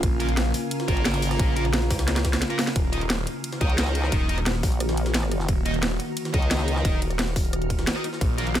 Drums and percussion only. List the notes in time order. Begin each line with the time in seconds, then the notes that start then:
0.03 kick, closed hi-hat, ride
0.20 closed hi-hat, ride
0.29 closed hi-hat
0.37 snare, closed hi-hat, ride
0.54 open hi-hat, ride
0.71 closed hi-hat, ride
0.80 snare, closed hi-hat
0.88 kick, closed hi-hat, ride
0.97 closed hi-hat
1.05 snare, closed hi-hat, ride
1.14 ride
1.22 open hi-hat
1.31 cross-stick, ride
1.39 kick, closed hi-hat, ride
1.56 closed hi-hat, ride
1.65 cross-stick, closed hi-hat
1.73 snare, closed hi-hat, ride
1.82 snare
1.91 kick, snare, open hi-hat, ride
1.99 snare, ride
2.08 snare, closed hi-hat, ride
2.16 snare, closed hi-hat, ride
2.25 kick, snare, closed hi-hat, ride
2.33 snare, closed hi-hat, ride
2.42 snare, closed hi-hat, ride
2.50 closed hi-hat
2.59 snare, open hi-hat
2.67 snare, ride
2.76 kick, closed hi-hat, ride
2.93 closed hi-hat, ride
3.01 closed hi-hat
3.10 snare, closed hi-hat, ride
3.27 closed hi-hat, ride
3.44 closed hi-hat, ride
3.53 snare, closed hi-hat
3.61 kick, closed hi-hat, ride
3.70 closed hi-hat
3.78 snare, closed hi-hat, ride
3.87 snare
3.95 closed hi-hat, ride
4.04 cross-stick, snare
4.12 kick, closed hi-hat, ride
4.29 closed hi-hat, ride
4.38 cross-stick, closed hi-hat
4.46 snare, closed hi-hat, ride
4.55 snare
4.63 kick, open hi-hat
4.72 ride
4.80 cross-stick, closed hi-hat, ride
4.89 snare, closed hi-hat
4.97 closed hi-hat, ride
5.06 snare, closed hi-hat
5.14 snare, closed hi-hat, ride
5.23 cross-stick
5.31 cross-stick, closed hi-hat, ride
5.40 snare
5.48 kick, closed hi-hat, ride
5.66 closed hi-hat, ride
5.74 closed hi-hat
5.83 snare, closed hi-hat, ride
6.00 closed hi-hat, ride
6.17 closed hi-hat, ride
6.25 snare, closed hi-hat
6.34 kick, closed hi-hat, ride
6.42 closed hi-hat
6.51 snare, closed hi-hat, ride
6.59 snare
6.68 closed hi-hat, ride
6.76 cross-stick, snare
6.85 kick, closed hi-hat, ride
7.02 closed hi-hat, ride
7.11 cross-stick, closed hi-hat
7.19 snare, closed hi-hat, ride
7.28 snare
7.36 kick, open hi-hat
7.45 ride
7.53 cross-stick, closed hi-hat
7.62 closed hi-hat
7.70 kick, closed hi-hat, ride
7.79 snare, closed hi-hat
7.87 snare, closed hi-hat, ride
7.96 cross-stick
8.04 cross-stick, closed hi-hat, ride
8.13 snare
8.21 kick, closed hi-hat, ride
8.38 closed hi-hat, ride
8.47 closed hi-hat
8.55 snare, closed hi-hat, ride